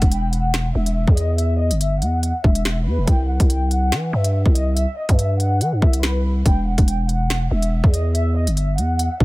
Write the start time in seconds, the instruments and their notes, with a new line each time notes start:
0.02 808-style bass E1, kick, closed hi-hat
0.12 violin section G5, closed hi-hat
0.33 violin section F#5, closed hi-hat
0.54 finger snap, snare, closed hi-hat
0.75 808-style bass E1, violin section E5
0.86 closed hi-hat
1.07 808-style bass E2, kick
1.17 violin section D#5, closed hi-hat
1.38 violin section E5, closed hi-hat
1.60 violin section D#5
1.71 808-style bass G1, closed hi-hat
1.81 violin section E5, closed hi-hat
2.02 808-style bass E2, violin section F#5, closed hi-hat
2.23 closed hi-hat
2.44 808-style bass E1, violin section E5, kick
2.55 closed hi-hat
2.65 finger snap, snare, closed hi-hat
2.86 808-style bass E2, violin section B4
2.98 808-style bass E1
3.07 808-style bass C2, violin section G5, kick, closed hi-hat
3.29 violin section F#5
3.40 808-style bass C2, kick, closed hi-hat
3.49 violin section G5, closed hi-hat
3.71 violin section F#5, closed hi-hat
3.92 808-style bass E3, finger snap, snare, closed hi-hat
4.13 808-style bass G2, violin section E5
4.24 closed hi-hat
4.46 808-style bass C2, kick
4.55 violin section D#5, closed hi-hat
4.76 violin section E5, closed hi-hat
4.97 violin section D#5
5.09 808-style bass G2, kick, closed hi-hat
5.18 violin section E5, closed hi-hat
5.40 violin section F#5, closed hi-hat
5.61 808-style bass E3, closed hi-hat
5.72 808-style bass G2
5.82 808-style bass C2, violin section E5, kick
5.93 closed hi-hat
6.03 violin section B4, finger snap, snare, closed hi-hat
6.46 808-style bass E1, violin section G5, kick, closed hi-hat
6.66 violin section F#5
6.78 808-style bass E1, kick, closed hi-hat
6.88 violin section G5, closed hi-hat
7.09 violin section F#5, closed hi-hat
7.30 finger snap, snare, closed hi-hat
7.51 808-style bass E1, violin section E5
7.62 closed hi-hat
7.84 808-style bass E2, kick
7.93 violin section D#5, closed hi-hat
8.14 violin section E5, closed hi-hat
8.36 violin section D#5
8.47 808-style bass G1, closed hi-hat
8.57 violin section E5, closed hi-hat
8.78 808-style bass E2, violin section F#5, closed hi-hat
8.99 closed hi-hat
9.20 808-style bass E1, violin section E5, kick